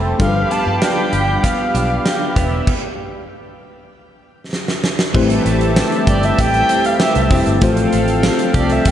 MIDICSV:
0, 0, Header, 1, 8, 480
1, 0, Start_track
1, 0, Key_signature, 0, "minor"
1, 0, Tempo, 618557
1, 154, Time_signature, 4, 2, 24, 8
1, 6916, End_track
2, 0, Start_track
2, 0, Title_t, "Erhu"
2, 0, Program_c, 0, 110
2, 161, Note_on_c, 0, 77, 96
2, 396, Note_on_c, 0, 81, 95
2, 408, Note_off_c, 0, 77, 0
2, 632, Note_off_c, 0, 81, 0
2, 637, Note_on_c, 0, 79, 95
2, 1113, Note_on_c, 0, 77, 84
2, 1125, Note_off_c, 0, 79, 0
2, 1834, Note_off_c, 0, 77, 0
2, 4729, Note_on_c, 0, 74, 89
2, 4846, Note_on_c, 0, 76, 99
2, 4857, Note_off_c, 0, 74, 0
2, 4967, Note_on_c, 0, 79, 115
2, 4979, Note_off_c, 0, 76, 0
2, 5321, Note_on_c, 0, 77, 99
2, 5333, Note_off_c, 0, 79, 0
2, 5438, Note_off_c, 0, 77, 0
2, 5443, Note_on_c, 0, 76, 88
2, 5774, Note_off_c, 0, 76, 0
2, 6647, Note_on_c, 0, 74, 81
2, 6766, Note_on_c, 0, 76, 90
2, 6777, Note_off_c, 0, 74, 0
2, 6889, Note_on_c, 0, 79, 102
2, 6901, Note_off_c, 0, 76, 0
2, 6916, Note_off_c, 0, 79, 0
2, 6916, End_track
3, 0, Start_track
3, 0, Title_t, "Analog synth pad"
3, 0, Program_c, 1, 89
3, 0, Note_on_c, 1, 67, 73
3, 0, Note_on_c, 1, 72, 78
3, 0, Note_on_c, 1, 76, 68
3, 0, Note_on_c, 1, 81, 66
3, 135, Note_off_c, 1, 67, 0
3, 136, Note_off_c, 1, 72, 0
3, 136, Note_off_c, 1, 76, 0
3, 136, Note_off_c, 1, 81, 0
3, 149, Note_on_c, 1, 67, 73
3, 149, Note_on_c, 1, 77, 66
3, 151, Note_on_c, 1, 83, 67
3, 151, Note_on_c, 1, 86, 82
3, 1815, Note_off_c, 1, 77, 0
3, 1838, Note_on_c, 1, 76, 67
3, 2053, Note_off_c, 1, 67, 0
3, 2053, Note_off_c, 1, 83, 0
3, 2054, Note_off_c, 1, 86, 0
3, 2074, Note_off_c, 1, 76, 0
3, 3993, Note_on_c, 1, 67, 77
3, 3994, Note_on_c, 1, 76, 72
3, 3994, Note_on_c, 1, 81, 71
3, 5895, Note_off_c, 1, 67, 0
3, 5895, Note_off_c, 1, 76, 0
3, 5895, Note_off_c, 1, 81, 0
3, 5916, Note_on_c, 1, 69, 78
3, 5918, Note_on_c, 1, 77, 70
3, 5918, Note_on_c, 1, 79, 71
3, 6916, Note_off_c, 1, 69, 0
3, 6916, Note_off_c, 1, 77, 0
3, 6916, Note_off_c, 1, 79, 0
3, 6916, End_track
4, 0, Start_track
4, 0, Title_t, "FM electric piano"
4, 0, Program_c, 2, 5
4, 0, Control_c, 2, 64, 127
4, 0, Note_on_c, 2, 55, 76
4, 0, Note_on_c, 2, 60, 72
4, 0, Note_on_c, 2, 64, 64
4, 0, Note_on_c, 2, 69, 83
4, 0, Note_on_c, 2, 79, 66
4, 0, Note_on_c, 2, 83, 69
4, 118, Note_off_c, 2, 55, 0
4, 122, Note_off_c, 2, 60, 0
4, 125, Note_off_c, 2, 64, 0
4, 127, Note_off_c, 2, 69, 0
4, 128, Note_off_c, 2, 83, 0
4, 146, Note_on_c, 2, 55, 65
4, 151, Note_on_c, 2, 62, 58
4, 156, Note_on_c, 2, 65, 59
4, 163, Control_c, 2, 64, 0
4, 163, Note_on_c, 2, 69, 55
4, 167, Note_off_c, 2, 79, 0
4, 209, Note_off_c, 2, 69, 0
4, 214, Note_on_c, 2, 71, 72
4, 313, Control_c, 2, 64, 127
4, 1799, Note_off_c, 2, 55, 0
4, 1802, Note_off_c, 2, 62, 0
4, 1804, Note_off_c, 2, 65, 0
4, 1833, Note_off_c, 2, 71, 0
4, 1843, Control_c, 2, 64, 0
4, 3985, Note_on_c, 2, 57, 77
4, 3989, Note_on_c, 2, 60, 73
4, 3993, Note_on_c, 2, 64, 70
4, 3999, Note_on_c, 2, 67, 71
4, 4002, Note_on_c, 2, 72, 87
4, 4137, Control_c, 2, 64, 127
4, 5639, Note_off_c, 2, 57, 0
4, 5641, Note_off_c, 2, 60, 0
4, 5643, Note_off_c, 2, 64, 0
4, 5646, Note_off_c, 2, 67, 0
4, 5647, Note_off_c, 2, 72, 0
4, 5670, Note_on_c, 2, 57, 50
4, 5671, Note_on_c, 2, 60, 48
4, 5674, Note_on_c, 2, 64, 48
4, 5677, Note_on_c, 2, 67, 46
4, 5678, Note_on_c, 2, 72, 56
4, 5898, Note_off_c, 2, 57, 0
4, 5902, Note_off_c, 2, 60, 0
4, 5907, Note_on_c, 2, 57, 81
4, 5911, Note_off_c, 2, 67, 0
4, 5911, Note_on_c, 2, 60, 75
4, 5914, Note_off_c, 2, 64, 0
4, 5915, Note_on_c, 2, 65, 71
4, 5916, Note_off_c, 2, 72, 0
4, 5920, Note_on_c, 2, 67, 71
4, 5924, Note_on_c, 2, 72, 86
4, 5926, Control_c, 2, 64, 0
4, 6042, Control_c, 2, 64, 127
4, 6916, Note_off_c, 2, 57, 0
4, 6916, Note_off_c, 2, 60, 0
4, 6916, Note_off_c, 2, 65, 0
4, 6916, Note_off_c, 2, 67, 0
4, 6916, Note_off_c, 2, 72, 0
4, 6916, End_track
5, 0, Start_track
5, 0, Title_t, "Analog polysynth"
5, 0, Program_c, 3, 90
5, 3995, Note_on_c, 3, 55, 74
5, 3995, Note_on_c, 3, 64, 76
5, 3995, Note_on_c, 3, 71, 84
5, 5884, Note_off_c, 3, 55, 0
5, 5884, Note_off_c, 3, 64, 0
5, 5884, Note_off_c, 3, 71, 0
5, 5914, Note_on_c, 3, 53, 77
5, 5915, Note_on_c, 3, 60, 81
5, 5916, Note_on_c, 3, 69, 85
5, 6916, Note_off_c, 3, 53, 0
5, 6916, Note_off_c, 3, 60, 0
5, 6916, Note_off_c, 3, 69, 0
5, 6916, End_track
6, 0, Start_track
6, 0, Title_t, "Clean electric guitar"
6, 0, Program_c, 4, 27
6, 0, Note_on_c, 4, 52, 77
6, 0, Note_on_c, 4, 57, 58
6, 0, Note_on_c, 4, 60, 56
6, 0, Note_on_c, 4, 67, 65
6, 149, Note_off_c, 4, 52, 0
6, 152, Note_on_c, 4, 53, 79
6, 200, Note_off_c, 4, 57, 0
6, 202, Note_off_c, 4, 60, 0
6, 392, Note_on_c, 4, 59, 57
6, 637, Note_on_c, 4, 62, 63
6, 873, Note_off_c, 4, 67, 0
6, 877, Note_on_c, 4, 67, 69
6, 1115, Note_off_c, 4, 59, 0
6, 1118, Note_on_c, 4, 59, 69
6, 1348, Note_off_c, 4, 62, 0
6, 1351, Note_on_c, 4, 62, 58
6, 1592, Note_off_c, 4, 67, 0
6, 1595, Note_on_c, 4, 67, 69
6, 1829, Note_off_c, 4, 59, 0
6, 1832, Note_on_c, 4, 59, 83
6, 1881, Note_off_c, 4, 53, 0
6, 2121, Note_off_c, 4, 59, 0
6, 2509, Note_off_c, 4, 62, 0
6, 2509, Note_off_c, 4, 67, 0
6, 3991, Note_on_c, 4, 52, 79
6, 4238, Note_on_c, 4, 57, 58
6, 4478, Note_on_c, 4, 60, 64
6, 4715, Note_on_c, 4, 67, 70
6, 4949, Note_off_c, 4, 57, 0
6, 4952, Note_on_c, 4, 57, 67
6, 5191, Note_off_c, 4, 60, 0
6, 5194, Note_on_c, 4, 60, 60
6, 5434, Note_off_c, 4, 67, 0
6, 5437, Note_on_c, 4, 67, 71
6, 5673, Note_off_c, 4, 60, 0
6, 5676, Note_on_c, 4, 60, 62
6, 5910, Note_off_c, 4, 52, 0
6, 5913, Note_on_c, 4, 53, 83
6, 6150, Note_off_c, 4, 57, 0
6, 6153, Note_on_c, 4, 57, 57
6, 6177, Note_off_c, 4, 67, 0
6, 6386, Note_off_c, 4, 60, 0
6, 6390, Note_on_c, 4, 60, 64
6, 6632, Note_on_c, 4, 67, 68
6, 6869, Note_off_c, 4, 57, 0
6, 6872, Note_on_c, 4, 57, 66
6, 6916, Note_off_c, 4, 53, 0
6, 6916, Note_off_c, 4, 57, 0
6, 6916, Note_off_c, 4, 60, 0
6, 6916, Note_off_c, 4, 67, 0
6, 6916, End_track
7, 0, Start_track
7, 0, Title_t, "Fingered electric bass"
7, 0, Program_c, 5, 33
7, 0, Note_on_c, 5, 29, 86
7, 93, Note_off_c, 5, 29, 0
7, 154, Note_on_c, 5, 31, 105
7, 334, Note_off_c, 5, 31, 0
7, 515, Note_on_c, 5, 43, 90
7, 605, Note_off_c, 5, 43, 0
7, 874, Note_on_c, 5, 31, 84
7, 1054, Note_off_c, 5, 31, 0
7, 1353, Note_on_c, 5, 35, 80
7, 1533, Note_off_c, 5, 35, 0
7, 1836, Note_on_c, 5, 28, 102
7, 2015, Note_off_c, 5, 28, 0
7, 3993, Note_on_c, 5, 33, 98
7, 4174, Note_off_c, 5, 33, 0
7, 4233, Note_on_c, 5, 33, 94
7, 4503, Note_off_c, 5, 33, 0
7, 4712, Note_on_c, 5, 31, 96
7, 4893, Note_off_c, 5, 31, 0
7, 4955, Note_on_c, 5, 33, 94
7, 5135, Note_off_c, 5, 33, 0
7, 5554, Note_on_c, 5, 36, 100
7, 5644, Note_off_c, 5, 36, 0
7, 5671, Note_on_c, 5, 29, 87
7, 5762, Note_off_c, 5, 29, 0
7, 5795, Note_on_c, 5, 31, 94
7, 5885, Note_off_c, 5, 31, 0
7, 6156, Note_on_c, 5, 33, 94
7, 6425, Note_off_c, 5, 33, 0
7, 6630, Note_on_c, 5, 36, 100
7, 6812, Note_off_c, 5, 36, 0
7, 6874, Note_on_c, 5, 41, 102
7, 6916, Note_off_c, 5, 41, 0
7, 6916, End_track
8, 0, Start_track
8, 0, Title_t, "Drums"
8, 153, Note_on_c, 9, 36, 116
8, 154, Note_on_c, 9, 42, 82
8, 231, Note_off_c, 9, 36, 0
8, 232, Note_off_c, 9, 42, 0
8, 396, Note_on_c, 9, 42, 65
8, 474, Note_off_c, 9, 42, 0
8, 633, Note_on_c, 9, 42, 70
8, 635, Note_on_c, 9, 38, 105
8, 711, Note_off_c, 9, 42, 0
8, 713, Note_off_c, 9, 38, 0
8, 875, Note_on_c, 9, 42, 63
8, 952, Note_off_c, 9, 42, 0
8, 1116, Note_on_c, 9, 36, 96
8, 1118, Note_on_c, 9, 42, 98
8, 1194, Note_off_c, 9, 36, 0
8, 1196, Note_off_c, 9, 42, 0
8, 1357, Note_on_c, 9, 42, 81
8, 1434, Note_off_c, 9, 42, 0
8, 1595, Note_on_c, 9, 38, 105
8, 1597, Note_on_c, 9, 42, 81
8, 1673, Note_off_c, 9, 38, 0
8, 1675, Note_off_c, 9, 42, 0
8, 1834, Note_on_c, 9, 36, 97
8, 1835, Note_on_c, 9, 42, 85
8, 1912, Note_off_c, 9, 36, 0
8, 1913, Note_off_c, 9, 42, 0
8, 2074, Note_on_c, 9, 36, 104
8, 2075, Note_on_c, 9, 49, 89
8, 2152, Note_off_c, 9, 36, 0
8, 2153, Note_off_c, 9, 49, 0
8, 3514, Note_on_c, 9, 38, 55
8, 3592, Note_off_c, 9, 38, 0
8, 3634, Note_on_c, 9, 38, 65
8, 3711, Note_off_c, 9, 38, 0
8, 3753, Note_on_c, 9, 38, 88
8, 3831, Note_off_c, 9, 38, 0
8, 3871, Note_on_c, 9, 38, 92
8, 3949, Note_off_c, 9, 38, 0
8, 3992, Note_on_c, 9, 49, 95
8, 3993, Note_on_c, 9, 36, 122
8, 4070, Note_off_c, 9, 36, 0
8, 4070, Note_off_c, 9, 49, 0
8, 4113, Note_on_c, 9, 42, 57
8, 4190, Note_off_c, 9, 42, 0
8, 4235, Note_on_c, 9, 42, 67
8, 4313, Note_off_c, 9, 42, 0
8, 4353, Note_on_c, 9, 42, 50
8, 4430, Note_off_c, 9, 42, 0
8, 4473, Note_on_c, 9, 38, 109
8, 4473, Note_on_c, 9, 54, 65
8, 4550, Note_off_c, 9, 38, 0
8, 4551, Note_off_c, 9, 54, 0
8, 4595, Note_on_c, 9, 42, 48
8, 4673, Note_off_c, 9, 42, 0
8, 4711, Note_on_c, 9, 42, 69
8, 4712, Note_on_c, 9, 36, 92
8, 4789, Note_off_c, 9, 36, 0
8, 4789, Note_off_c, 9, 42, 0
8, 4835, Note_on_c, 9, 42, 49
8, 4913, Note_off_c, 9, 42, 0
8, 4955, Note_on_c, 9, 36, 102
8, 4957, Note_on_c, 9, 42, 104
8, 5033, Note_off_c, 9, 36, 0
8, 5034, Note_off_c, 9, 42, 0
8, 5074, Note_on_c, 9, 42, 43
8, 5151, Note_off_c, 9, 42, 0
8, 5193, Note_on_c, 9, 42, 81
8, 5271, Note_off_c, 9, 42, 0
8, 5312, Note_on_c, 9, 42, 60
8, 5389, Note_off_c, 9, 42, 0
8, 5429, Note_on_c, 9, 38, 112
8, 5432, Note_on_c, 9, 54, 61
8, 5507, Note_off_c, 9, 38, 0
8, 5509, Note_off_c, 9, 54, 0
8, 5550, Note_on_c, 9, 42, 57
8, 5627, Note_off_c, 9, 42, 0
8, 5668, Note_on_c, 9, 46, 85
8, 5670, Note_on_c, 9, 36, 97
8, 5746, Note_off_c, 9, 46, 0
8, 5748, Note_off_c, 9, 36, 0
8, 5788, Note_on_c, 9, 42, 46
8, 5866, Note_off_c, 9, 42, 0
8, 5908, Note_on_c, 9, 42, 88
8, 5911, Note_on_c, 9, 36, 116
8, 5985, Note_off_c, 9, 42, 0
8, 5989, Note_off_c, 9, 36, 0
8, 6028, Note_on_c, 9, 42, 59
8, 6106, Note_off_c, 9, 42, 0
8, 6150, Note_on_c, 9, 42, 70
8, 6228, Note_off_c, 9, 42, 0
8, 6269, Note_on_c, 9, 42, 53
8, 6346, Note_off_c, 9, 42, 0
8, 6389, Note_on_c, 9, 38, 110
8, 6390, Note_on_c, 9, 54, 66
8, 6467, Note_off_c, 9, 38, 0
8, 6467, Note_off_c, 9, 54, 0
8, 6510, Note_on_c, 9, 42, 47
8, 6587, Note_off_c, 9, 42, 0
8, 6628, Note_on_c, 9, 42, 74
8, 6629, Note_on_c, 9, 36, 96
8, 6705, Note_off_c, 9, 42, 0
8, 6707, Note_off_c, 9, 36, 0
8, 6747, Note_on_c, 9, 42, 47
8, 6825, Note_off_c, 9, 42, 0
8, 6869, Note_on_c, 9, 42, 106
8, 6872, Note_on_c, 9, 36, 102
8, 6916, Note_off_c, 9, 36, 0
8, 6916, Note_off_c, 9, 42, 0
8, 6916, End_track
0, 0, End_of_file